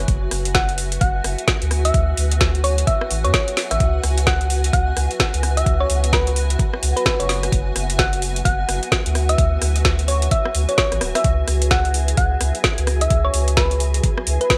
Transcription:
Already playing: F#4 B4 E5 F#5 G#5
0.08 F#1, kick, closed hi-hat
0.31 F#1, cross-stick, open hi-hat
0.45 closed hi-hat
0.55 F#5, kick, snare
0.69 closed hi-hat
0.78 open hi-hat
0.92 closed hi-hat
1.01 F#1 F#5, kick, closed hi-hat
1.24 F#1, cross-stick, open hi-hat
1.38 closed hi-hat
1.48 kick, snare
1.62 D2, closed hi-hat
1.71 cross-stick, open hi-hat
1.85 E5, closed hi-hat
1.94 D2, kick, closed hi-hat
2.17 D2, open hi-hat
2.32 closed hi-hat
2.41 kick, snare
2.55 closed hi-hat
2.64 C#5, open hi-hat
2.78 closed hi-hat
2.87 E5, kick, closed hi-hat
3.01 cross-stick
3.10 A1, open hi-hat
3.24 F#2 C#5, closed hi-hat
3.34 C#5, kick, snare
3.48 closed hi-hat
3.57 snare, open hi-hat
3.71 A1 E5, cross-stick, closed hi-hat
3.80 C#2, kick, closed hi-hat
4.04 C#2, cross-stick, open hi-hat
4.18 closed hi-hat
4.27 F#5, kick, snare
4.41 closed hi-hat
4.50 open hi-hat
4.64 closed hi-hat
4.73 C#2 F#5, kick, closed hi-hat
4.97 C#2, cross-stick, open hi-hat
5.11 closed hi-hat
5.20 kick, snare
5.34 C#2, closed hi-hat
5.43 cross-stick, open hi-hat
5.57 E5, closed hi-hat
5.66 C#2, kick, closed hi-hat
5.80 C#5
5.90 C#2, open hi-hat
6.04 closed hi-hat
6.13 B4, kick, snare
6.27 closed hi-hat
6.36 open hi-hat
6.50 closed hi-hat
6.59 kick, closed hi-hat
6.74 cross-stick
6.83 C#2, open hi-hat
6.96 B4, closed hi-hat
7.06 B4, kick, snare
7.20 F#1 C#5, closed hi-hat
7.29 snare, open hi-hat
7.43 cross-stick, closed hi-hat
7.52 F#1, kick, closed hi-hat
7.76 F#1, cross-stick, open hi-hat
7.90 closed hi-hat
7.99 F#5, kick, snare
8.13 closed hi-hat
8.22 open hi-hat
8.36 closed hi-hat
8.45 F#1 F#5, kick, closed hi-hat
8.69 F#1, cross-stick, open hi-hat
8.83 closed hi-hat
8.92 kick, snare
9.06 D2, closed hi-hat
9.15 cross-stick, open hi-hat
9.29 E5, closed hi-hat
9.38 D2, kick, closed hi-hat
9.62 D2, cross-stick, open hi-hat
9.76 closed hi-hat
9.85 kick, snare
9.99 closed hi-hat
10.08 C#5, open hi-hat
10.22 closed hi-hat
10.31 E5, kick, closed hi-hat
10.45 cross-stick
10.55 D2, open hi-hat
10.69 C#5, closed hi-hat
10.78 C#5, kick, snare
10.92 A1, cross-stick, closed hi-hat
11.01 D1, cross-stick, open hi-hat
11.15 E5, cross-stick, closed hi-hat
11.24 C#2 G#4 G#5, kick, closed hi-hat
11.48 C#2, cross-stick, open hi-hat
11.62 closed hi-hat
11.71 F#5, kick, snare
11.85 closed hi-hat
11.94 open hi-hat
12.08 closed hi-hat
12.17 C#2 F#5, kick, closed hi-hat
12.41 C#2, cross-stick, open hi-hat
12.55 closed hi-hat
12.64 kick, snare
12.78 C#2, closed hi-hat
12.87 cross-stick, open hi-hat
13.01 E5, closed hi-hat
13.10 C#2, kick, closed hi-hat
13.25 C#5
13.34 C#2, open hi-hat
13.48 closed hi-hat
13.57 B4, kick, snare
13.71 closed hi-hat
13.80 open hi-hat
13.94 closed hi-hat
14.04 kick, closed hi-hat
14.18 cross-stick
14.27 C#2, open hi-hat
14.41 B4, closed hi-hat
14.50 B4, kick, snare

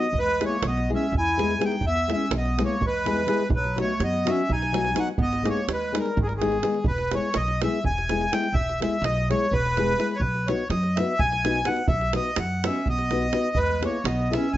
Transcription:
Already playing: B3 D#5
0.03 davul high
0.13 E2, davul low
0.19 G#3 B4
0.28 davul high
0.40 G#3 B3 E4 G#4, davul high
0.45 A#3 C#5
0.62 B1, davul high
0.67 B3 D#5
0.77 davul high
0.89 G#3 B3 E4 G#4
0.94 C#4 E5
1.12 E2, davul low
1.18 E4 G#5
1.37 G#3 B3 E4 G#4, davul high
1.51 davul high
1.59 G#3 B3 E4 G#4, davul high
1.65 D#4 G5
1.72 davul high
1.81 E2, davul low
1.87 B3 E5
1.95 davul high
2.08 G#3 B3 E4 G#4, davul high
2.13 C#4 E5
2.31 B1, davul high
2.37 B3 D#5
2.46 davul high
2.58 G#3 B3 E4 G#4, davul high
2.63 A#3 C#5
2.81 E2 G#3, davul low
2.87 B4
3.05 G#3 B3 E4 G#4, davul high
3.17 davul high
3.27 G#3 B3 E4 G#4, davul high
3.40 davul high
3.50 B1 F#3, davul low
3.56 B4
3.64 davul high
3.76 F#3 B3 D#4 F#4, davul high
3.81 A3 C#5
4.00 F#2 B3, davul high
4.04 D#5
4.13 davul high
4.25 F#3 B3 D#4 F#4, davul high
4.29 C#4 E5
4.49 B1 D#4 G#5, davul low
4.62 davul high
4.73 F#3 B3 D#4 F#4, davul high
4.85 davul high
4.94 F#3 B3 D#4 F#4, davul high
4.98 D#4 F#5
5.07 davul high
5.18 G#1 B3, davul low
5.22 D#5
5.33 davul high
5.43 G#3 A#3 B3 D#4 G#4, davul high
5.50 C#5
5.57 davul high
5.68 D#2 G#3, davul high
5.73 B4
5.82 davul high
5.92 G#3 B3 D#4 G#4, davul high
5.96 G3 A#4
6.06 davul high
6.17 G#1 D#3, davul low
6.23 G3 G#4 A#4
6.29 davul high
6.35 D#3 G#4
6.41 G#3 B3 D#4 G#4, davul high
6.52 davul high
6.63 G#3 B3 D#4 G#4, davul high
6.74 davul high
6.84 E1 B4, davul low
6.98 davul high
7.11 G#3 B3 E4 G#4 C#5, davul high
7.34 B1 D#5, davul high
7.48 davul high
7.62 G#3 B3 E4 G#4 E5, davul high
7.84 E1 G#5, davul low
7.98 davul high
8.09 G#3 B3 E4 G#4, davul high
8.21 davul high
8.32 G#3 B3 E4 G#4 G5, davul high
8.44 davul high
8.53 E1 E5, davul low
8.69 davul high
8.80 G#3 B3 E4 G#4 E5, davul high
9.02 B1 D#5, davul high
9.17 davul high
9.30 G#3 B3 E4 G#4 C#5, davul high
9.51 E1 B4, davul low
9.66 davul high
9.77 G#3 B3 E4 G#4, davul high
9.89 davul high
9.98 G#3 B3 E4 G#4, davul high
10.11 davul high
10.15 C#5
10.20 B1 B4, davul low
10.35 davul high
10.47 B3 D#4 F#4 B4 C#5, davul high
10.70 F#2 D#5, davul high
10.83 davul high
10.96 B3 D#4 E5, davul high
11.00 F#4 B4
11.19 B1 G#5, davul low
11.32 davul high
11.44 B3 D#4 F#4 B4, davul high
11.55 davul high
11.65 B3 D#4 F#4 B4 F#5, davul high
11.77 davul high
11.88 B1 E5, davul low
12.01 davul high
12.13 B3 D#4 F#4 B4 D#5, davul high
12.36 F#2 F#5, davul high
12.64 B3 C#4 D#4 F#4 B4 E5, davul high
12.75 davul high
12.86 B1 B3 D#5, davul low
12.98 davul high
13.11 B3 D#4 F#4 B4, davul high
13.22 davul high
13.33 B3 D#4 F#4 B4, davul high
13.55 E2 G#3 B4, davul low
13.70 davul high
13.81 A#3 B3 E4 G#4 B4, davul high
13.85 C#5
14.04 B1 B3 D#5, davul high
14.20 davul high
14.31 B3 E4 G#4 B4 E5, davul high
14.36 C#4
14.53 E2 G#5

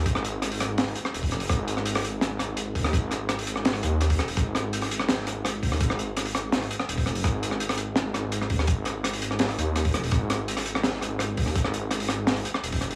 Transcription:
0.06 G#1, kick, closed hi-hat
0.15 cross-stick
0.24 closed hi-hat
0.42 cross-stick, closed hi-hat
0.52 open hi-hat
0.60 cross-stick, closed hi-hat
0.78 snare, closed hi-hat
0.87 cross-stick, open hi-hat
0.95 closed hi-hat
1.05 cross-stick
1.13 D#1, closed hi-hat
1.23 kick, open hi-hat
1.31 F#1, cross-stick, closed hi-hat
1.40 open hi-hat
1.49 G#1, kick, cross-stick, closed hi-hat
1.68 closed hi-hat
1.77 cross-stick
1.85 closed hi-hat
1.95 cross-stick, open hi-hat
2.04 closed hi-hat
2.21 cross-stick, snare, closed hi-hat
2.39 G#1, cross-stick, closed hi-hat
2.57 closed hi-hat
2.75 D#2, kick, open hi-hat
2.84 cross-stick
2.93 G#1, kick, closed hi-hat
3.11 cross-stick, closed hi-hat
3.29 cross-stick, closed hi-hat
3.39 open hi-hat
3.47 closed hi-hat
3.56 cross-stick
3.65 snare, closed hi-hat
3.73 cross-stick, open hi-hat
3.83 D#2, closed hi-hat
4.01 cross-stick, closed hi-hat
4.10 kick, open hi-hat
4.19 D#1, cross-stick, closed hi-hat
4.28 open hi-hat
4.37 G#1, kick, cross-stick, closed hi-hat
4.55 cross-stick, closed hi-hat
4.73 closed hi-hat
4.81 cross-stick, open hi-hat
4.91 closed hi-hat
4.99 cross-stick
5.09 snare, closed hi-hat
5.27 G#1, cross-stick, closed hi-hat
5.45 cross-stick, closed hi-hat
5.63 D#2, kick, open hi-hat
5.72 cross-stick
5.81 G#1, kick, closed hi-hat
5.90 cross-stick
5.99 closed hi-hat
6.17 cross-stick, closed hi-hat
6.25 open hi-hat
6.35 cross-stick, closed hi-hat
6.52 snare, closed hi-hat
6.62 cross-stick, open hi-hat
6.71 closed hi-hat
6.80 cross-stick
6.88 D#1, closed hi-hat
6.98 kick, open hi-hat
7.06 F#1, cross-stick, closed hi-hat
7.15 open hi-hat
7.24 G#1, kick, cross-stick, closed hi-hat
7.43 closed hi-hat
7.51 cross-stick
7.60 closed hi-hat
7.69 cross-stick, open hi-hat
7.77 closed hi-hat
7.96 cross-stick, snare, closed hi-hat
8.14 G#1, cross-stick, closed hi-hat
8.32 closed hi-hat
8.42 cross-stick
8.50 D#2, kick, open hi-hat
8.59 cross-stick
8.67 G#1, kick, closed hi-hat
8.85 cross-stick, closed hi-hat
9.04 cross-stick, closed hi-hat
9.13 open hi-hat
9.22 closed hi-hat
9.31 cross-stick
9.39 snare, closed hi-hat
9.49 cross-stick, open hi-hat
9.58 D#2, closed hi-hat
9.76 cross-stick, closed hi-hat
9.85 kick, open hi-hat
9.94 D#1, cross-stick, closed hi-hat
10.04 open hi-hat
10.11 G#1, kick, cross-stick, closed hi-hat
10.30 cross-stick, closed hi-hat
10.48 closed hi-hat
10.57 cross-stick, open hi-hat
10.65 closed hi-hat
10.75 cross-stick
10.83 snare, closed hi-hat
11.01 G#1, cross-stick, closed hi-hat
11.19 cross-stick, closed hi-hat
11.37 D#2, kick, open hi-hat
11.46 cross-stick
11.56 G#1, kick, closed hi-hat
11.64 cross-stick
11.74 closed hi-hat
11.91 cross-stick, closed hi-hat
12.00 open hi-hat
12.09 cross-stick, closed hi-hat
12.27 snare, closed hi-hat
12.36 cross-stick, open hi-hat
12.45 closed hi-hat
12.54 cross-stick
12.63 D#1, closed hi-hat
12.72 kick, open hi-hat
12.81 F#1, cross-stick, closed hi-hat
12.91 open hi-hat

